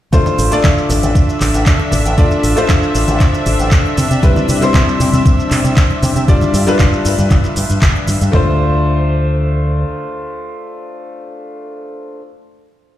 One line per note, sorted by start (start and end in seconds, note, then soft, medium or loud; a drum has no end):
0.12 0.21 D2 loud
0.12 0.48 A3 medium
0.12 0.49 D4 medium
0.12 8.34 D4 medium
0.12 0.49 F4 medium
0.12 0.49 C5 medium
0.12 8.34 E5 medium
0.12 kick loud
0.12 closed hi-hat medium
0.12 cabasa medium
0.12 shaker soft
0.26 muted conga medium
0.26 high conga medium
0.26 shaker soft
0.38 0.47 A1 medium
0.38 open hi-hat loud
0.38 cabasa medium
0.38 shaker medium
0.51 2.15 A3 medium
0.51 2.15 D4 medium
0.51 2.15 F4 medium
0.51 2.16 D5 loud
0.51 closed hi-hat medium
0.51 cabasa soft
0.51 shaker soft
0.64 0.73 D2 loud
0.64 kick loud
0.64 clap loud
0.64 closed hi-hat medium
0.64 high conga medium
0.64 low conga medium
0.64 cabasa soft
0.64 shaker soft
0.78 shaker soft
0.89 0.98 A1 loud
0.89 open hi-hat medium
0.89 low conga medium
0.89 cabasa medium
0.89 shaker medium
1.03 1.11 A1 loud
1.03 closed hi-hat medium
1.03 high conga medium
1.03 cabasa soft
1.03 shaker soft
1.15 1.24 D2 medium
1.15 kick loud
1.15 closed hi-hat medium
1.15 cabasa soft
1.15 shaker soft
1.29 cabasa soft
1.29 shaker soft
1.41 1.49 A1 loud
1.41 clap medium
1.41 open hi-hat loud
1.41 muted conga soft
1.41 high conga medium
1.41 cabasa loud
1.41 shaker medium
1.54 1.62 A1 loud
1.54 closed hi-hat medium
1.54 cabasa soft
1.54 shaker soft
1.66 1.75 D2 medium
1.66 kick loud
1.66 clap loud
1.66 closed hi-hat medium
1.66 cabasa medium
1.66 shaker soft
1.79 muted conga medium
1.79 cabasa soft
1.92 2.01 A1 loud
1.92 open hi-hat medium
1.92 high conga loud
1.92 cabasa medium
1.92 shaker medium
2.06 2.13 A1 medium
2.06 closed hi-hat medium
2.06 cabasa soft
2.06 shaker soft
2.17 2.26 D2 loud
2.17 2.53 A3 medium
2.17 2.54 D4 medium
2.17 2.54 F4 medium
2.17 2.54 D5 medium
2.17 kick loud
2.17 closed hi-hat medium
2.17 cabasa medium
2.17 shaker soft
2.31 muted conga medium
2.31 high conga medium
2.31 shaker soft
2.43 2.52 A1 medium
2.43 open hi-hat loud
2.43 cabasa medium
2.43 shaker medium
2.56 3.95 A3 medium
2.56 3.96 D4 medium
2.56 3.96 F4 medium
2.56 3.96 C5 loud
2.56 closed hi-hat medium
2.56 cabasa soft
2.56 shaker soft
2.69 2.78 D2 loud
2.69 kick loud
2.69 clap loud
2.69 closed hi-hat medium
2.69 high conga medium
2.69 low conga loud
2.69 cabasa medium
2.69 shaker soft
2.83 shaker soft
2.94 3.03 A1 loud
2.94 open hi-hat medium
2.94 cabasa medium
2.94 shaker medium
3.08 3.16 A1 loud
3.08 closed hi-hat medium
3.08 high conga loud
3.08 cabasa soft
3.08 shaker soft
3.20 3.29 D2 medium
3.20 kick loud
3.20 clap medium
3.20 closed hi-hat medium
3.20 cabasa soft
3.20 shaker soft
3.34 muted fingered electric bass stroke soft
3.34 muted conga medium
3.34 cabasa soft
3.34 shaker soft
3.46 3.55 A1 loud
3.46 open hi-hat loud
3.46 high conga medium
3.46 cabasa medium
3.46 shaker medium
3.59 3.67 A1 loud
3.59 closed hi-hat medium
3.59 cabasa soft
3.59 shaker soft
3.71 3.80 D2 medium
3.71 kick loud
3.71 clap loud
3.71 closed hi-hat medium
3.71 cabasa medium
3.71 shaker soft
3.85 cabasa soft
3.97 4.06 C3 loud
3.97 open hi-hat loud
3.97 high conga loud
3.97 cabasa loud
3.97 shaker medium
4.10 4.19 C3 loud
4.10 closed hi-hat medium
4.10 cabasa soft
4.10 shaker soft
4.22 4.31 C2 loud
4.22 4.59 G3 medium
4.22 4.59 C4 medium
4.22 4.59 E4 medium
4.22 4.59 B4 medium
4.22 kick loud
4.22 closed hi-hat medium
4.22 cabasa medium
4.22 shaker soft
4.36 muted conga medium
4.36 high conga medium
4.36 shaker soft
4.48 4.57 C3 loud
4.48 open hi-hat loud
4.48 cabasa medium
4.48 shaker medium
4.61 6.25 G3 medium
4.61 6.25 C4 medium
4.61 6.25 E4 medium
4.61 6.26 C5 loud
4.61 muted fingered electric bass stroke soft
4.61 closed hi-hat medium
4.61 cabasa soft
4.61 shaker soft
4.74 4.83 C2 loud
4.74 kick loud
4.74 clap loud
4.74 closed hi-hat medium
4.74 high conga medium
4.74 low conga loud
4.74 cabasa medium
4.74 shaker soft
4.89 shaker soft
5.00 5.08 C3 loud
5.00 open hi-hat loud
5.00 low conga medium
5.00 cabasa medium
5.00 shaker medium
5.13 5.21 C3 loud
5.13 closed hi-hat medium
5.13 high conga loud
5.13 cabasa soft
5.13 shaker soft
5.25 5.34 C2 medium
5.25 kick loud
5.25 closed hi-hat medium
5.25 cabasa medium
5.25 shaker soft
5.39 cabasa soft
5.39 shaker soft
5.51 5.60 C3 loud
5.51 clap medium
5.51 open hi-hat loud
5.51 muted conga soft
5.51 high conga medium
5.51 cabasa medium
5.51 shaker medium
5.64 5.72 C3 loud
5.64 closed hi-hat medium
5.64 cabasa soft
5.64 shaker soft
5.77 5.85 C2 medium
5.77 kick loud
5.77 clap loud
5.77 closed hi-hat medium
5.77 cabasa medium
5.77 shaker soft
5.90 muted conga medium
5.90 cabasa soft
6.02 6.11 C3 loud
6.02 open hi-hat loud
6.02 high conga loud
6.02 cabasa medium
6.02 shaker medium
6.16 6.24 C3 loud
6.16 closed hi-hat medium
6.16 cabasa soft
6.16 shaker soft
6.28 6.37 G1 loud
6.28 6.64 G3 medium
6.28 6.64 D4 medium
6.28 6.64 F4 medium
6.28 6.64 D5 medium
6.28 kick loud
6.28 closed hi-hat medium
6.28 cabasa medium
6.28 shaker soft
6.41 muted conga medium
6.41 high conga loud
6.41 cabasa soft
6.41 shaker soft
6.54 6.62 G2 loud
6.54 open hi-hat loud
6.54 cabasa medium
6.54 shaker medium
6.66 8.30 G3 medium
6.66 8.30 D4 medium
6.66 8.31 F4 medium
6.66 8.31 B4 loud
6.66 muted fingered electric bass stroke soft
6.66 closed hi-hat medium
6.66 cabasa soft
6.66 shaker soft
6.79 6.88 G1 loud
6.79 kick loud
6.79 clap loud
6.79 closed hi-hat medium
6.79 high conga medium
6.79 low conga medium
6.79 cabasa medium
6.79 shaker soft
6.93 shaker soft
7.05 7.14 G2 loud
7.05 open hi-hat loud
7.05 cabasa medium
7.05 shaker medium
7.18 7.26 G2 loud
7.18 closed hi-hat medium
7.18 high conga medium
7.18 cabasa soft
7.18 shaker soft
7.30 7.39 G1 loud
7.30 kick loud
7.30 clap medium
7.30 closed hi-hat medium
7.30 cabasa medium
7.30 shaker soft
7.44 muted fingered electric bass stroke soft
7.44 muted conga medium
7.44 cabasa soft
7.44 shaker soft
7.56 7.65 G2 loud
7.56 open hi-hat loud
7.56 high conga medium
7.56 cabasa medium
7.56 shaker medium
7.69 7.78 G2 medium
7.69 closed hi-hat medium
7.69 muted conga soft
7.69 cabasa soft
7.69 shaker soft
7.82 7.90 G1 medium
7.82 kick loud
7.82 clap loud
7.82 closed hi-hat medium
7.82 cabasa medium
7.82 shaker soft
7.95 cabasa soft
8.07 8.16 G2 medium
8.07 open hi-hat loud
8.07 high conga loud
8.07 cabasa loud
8.07 shaker medium
8.21 8.29 G2 medium
8.21 closed hi-hat medium
8.21 cabasa soft
8.21 shaker soft
8.32 9.83 D2 loud
8.32 12.17 A3 medium
8.32 12.18 D4 medium
8.32 12.19 F4 medium
8.32 12.20 C5 loud
8.32 kick loud
8.32 floor tom loud